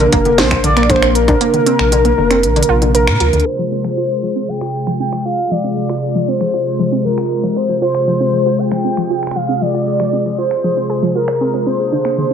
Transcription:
Already playing: analog synth pad C3 A#3 D4, soft synth lead A#4, synth texture A#4
0.00 closed hi-hat
0.12 sub bass F1, synth arpeggio sound A#3, kick, closed hi-hat
0.25 synth arpeggio sound D3, closed hi-hat
0.38 sub bass A#1, synth arpeggio sound C4, soft synth lead C5, snare, closed hi-hat
0.51 finger snap, kick, closed hi-hat
0.64 sub bass A#1, synth arpeggio sound D3, soft synth lead D5, closed hi-hat
0.77 synth arpeggio sound A#3, finger snap, closed hi-hat
0.83 finger snap
0.90 synth arpeggio sound D3, soft synth lead C5, finger snap, kick, closed hi-hat
0.96 finger snap
1.02 synth arpeggio sound C4, finger snap, closed hi-hat
1.15 soft synth lead A#4, closed hi-hat
1.28 synth arpeggio sound D3, kick, closed hi-hat
1.41 synth arpeggio sound A#3, closed hi-hat
1.54 synth arpeggio sound D3, closed hi-hat
1.66 synth arpeggio sound C4, closed hi-hat
1.79 sub bass A#1, finger snap
1.92 synth arpeggio sound D3, closed hi-hat
2.05 synth arpeggio sound A#3, closed hi-hat
2.18 sub bass F1, synth arpeggio sound D3
2.31 synth arpeggio sound C4, finger snap, closed hi-hat
2.43 sub bass A#1, closed hi-hat
2.56 synth arpeggio sound D3, closed hi-hat
2.63 closed hi-hat
2.69 sub bass A#1, synth arpeggio sound F4
2.82 synth arpeggio sound D3, closed hi-hat
2.95 synth arpeggio sound A#4, soft synth lead A#4, closed hi-hat
3.07 sub bass A#2, finger snap, closed hi-hat
3.20 sub bass D2, synth arpeggio sound F3, closed hi-hat
3.33 sub bass D2, synth arpeggio sound D3, closed hi-hat
3.40 closed hi-hat
3.46 analog synth pad C3 G#3 F4, synth texture G#4, soft synth lead C5, closed hi-hat
3.59 synth arpeggio sound F3
3.72 synth arpeggio sound C4, soft synth lead C5
3.84 synth arpeggio sound F3, finger snap
3.97 synth arpeggio sound F4
4.23 synth arpeggio sound F3
4.36 synth arpeggio sound C4
4.49 synth arpeggio sound F3, soft synth lead G5
4.61 synth arpeggio sound F4, finger snap
4.87 synth arpeggio sound F3, finger snap
5.00 synth arpeggio sound C4, soft synth lead G5
5.13 synth arpeggio sound F3, finger snap
5.25 synth arpeggio sound F4, soft synth lead F5
5.51 synth arpeggio sound F3, soft synth lead D5
5.64 synth arpeggio sound C4
5.77 synth arpeggio sound F3
5.89 synth arpeggio sound F4, finger snap
6.15 synth arpeggio sound F3
6.28 synth arpeggio sound C4, soft synth lead C5
6.41 synth arpeggio sound F3, finger snap
6.54 synth arpeggio sound F4
6.79 synth arpeggio sound F3
6.92 synth arpeggio sound C4
7.05 synth arpeggio sound F3, soft synth lead A#4
7.18 synth arpeggio sound F4, finger snap
7.43 synth arpeggio sound F3
7.56 synth arpeggio sound C4, soft synth lead C5
7.69 synth arpeggio sound F3
7.82 synth arpeggio sound F4, soft synth lead C5
7.95 finger snap
8.08 synth arpeggio sound F3
8.20 synth arpeggio sound C4
8.33 synth arpeggio sound F3
8.46 synth arpeggio sound F4
8.59 soft synth lead G5
8.72 synth arpeggio sound F3, finger snap
8.85 synth arpeggio sound C4
8.97 synth arpeggio sound F3, finger snap
9.10 synth arpeggio sound F4
9.23 finger snap
9.27 finger snap
9.31 finger snap
9.36 synth arpeggio sound F3, soft synth lead F5
9.49 synth arpeggio sound C4
9.61 synth arpeggio sound F3, soft synth lead D5
9.74 synth arpeggio sound F4
10.00 synth arpeggio sound F3, finger snap
10.13 synth arpeggio sound C4
10.26 synth arpeggio sound F3
10.38 synth arpeggio sound F4, soft synth lead C5
10.51 finger snap
10.64 synth arpeggio sound F3
10.77 synth arpeggio sound C4
10.90 synth arpeggio sound G#4
11.03 synth arpeggio sound F3
11.15 synth arpeggio sound F4, soft synth lead A#4
11.28 synth arpeggio sound C5, finger snap
11.41 synth arpeggio sound C4
11.54 synth arpeggio sound C4
11.66 analog synth pad C3 A#3 D4, synth arpeggio sound C4, soft synth lead C5
11.92 synth arpeggio sound D3, soft synth lead C5
12.05 synth arpeggio sound A#3, finger snap
12.18 synth arpeggio sound D3

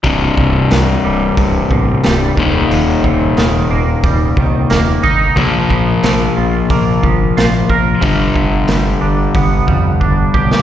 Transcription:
0.03 fingered electric bass C1, overdriven electric guitar C2 G2 C3, clean electric guitar C2, kick, open hi-hat
0.37 fingered electric bass C1, clean electric guitar G2, kick
0.70 fingered electric bass C2, clean electric guitar G2, snare, open hi-hat
1.04 fingered electric bass C1, clean electric guitar G3
1.37 fingered electric bass C1, clean electric guitar C3, kick, open hi-hat
1.71 fingered electric bass A1, clean electric guitar G2, kick
2.04 fingered electric bass C1, clean electric guitar G3, snare, open hi-hat
2.37 fingered electric bass D#1, overdriven electric guitar D#2 A#2 D#3, clean electric guitar D#2, kick
2.71 fingered electric bass D#1, clean electric guitar D#2, open hi-hat
3.04 fingered electric bass D#1, clean electric guitar A#2, kick
3.37 fingered electric bass D#1, clean electric guitar D#3, snare, open hi-hat
3.71 fingered electric bass D#1, clean electric guitar A#3
4.03 fingered electric bass D#1, clean electric guitar G3, kick, open hi-hat
4.37 fingered electric bass C2, clean electric guitar D#3, kick
4.70 fingered electric bass D#1, clean electric guitar A#3, snare, open hi-hat
5.03 fingered electric bass G1, clean electric guitar D#4, kick
5.36 fingered electric bass A#1, overdriven electric guitar A#2 F3 A#3, clean electric guitar A#2, kick, open hi-hat
5.70 fingered electric bass A#1, clean electric guitar F3, kick
6.03 fingered electric bass A#1, clean electric guitar F3, snare, open hi-hat
6.37 fingered electric bass A#1, clean electric guitar F4
6.70 fingered electric bass A#1, clean electric guitar A#3, kick, open hi-hat
7.03 fingered electric bass G1, clean electric guitar F3, kick
7.37 fingered electric bass A#1, clean electric guitar F4, snare, open hi-hat
7.70 fingered electric bass A#1, clean electric guitar A#4, kick
8.01 fingered electric bass G1, overdriven electric guitar G2 D3 G3, clean electric guitar G2, kick, open hi-hat
8.36 fingered electric bass G1, clean electric guitar D3, kick
8.68 fingered electric bass G1, clean electric guitar G3, snare, open hi-hat
9.01 fingered electric bass G1, clean electric guitar D4
9.35 fingered electric bass G1, clean electric guitar B3, kick, open hi-hat
9.67 fingered electric bass F2, clean electric guitar G3, kick
10.01 fingered electric bass G1, clean electric guitar D4, kick
10.34 fingered electric bass B1, clean electric guitar G4, kick
10.51 snare

